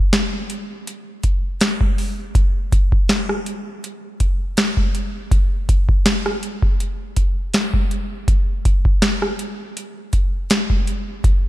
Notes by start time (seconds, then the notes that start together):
0.13 snare, closed hi-hat
0.50 closed hi-hat
0.87 closed hi-hat
1.23 kick, closed hi-hat
1.61 snare, closed hi-hat
1.81 kick
1.98 open hi-hat
2.35 kick, closed hi-hat
2.72 kick, closed hi-hat
2.92 kick
3.09 snare, closed hi-hat
3.29 cross-stick
3.46 closed hi-hat
3.84 closed hi-hat
4.20 kick, closed hi-hat
4.57 snare, closed hi-hat
4.77 kick
4.95 closed hi-hat
5.31 kick, closed hi-hat
5.69 kick, closed hi-hat
5.89 kick
6.06 snare, closed hi-hat
6.26 cross-stick
6.43 closed hi-hat
6.62 kick
6.80 closed hi-hat
7.16 kick, closed hi-hat
7.54 snare, closed hi-hat
7.74 kick
7.91 closed hi-hat
8.28 kick, closed hi-hat
8.65 kick, closed hi-hat
8.85 kick
9.02 snare, closed hi-hat
9.22 cross-stick
9.39 closed hi-hat
9.77 closed hi-hat
10.13 kick, closed hi-hat
10.50 snare, closed hi-hat
10.70 kick
10.87 closed hi-hat
11.24 kick, closed hi-hat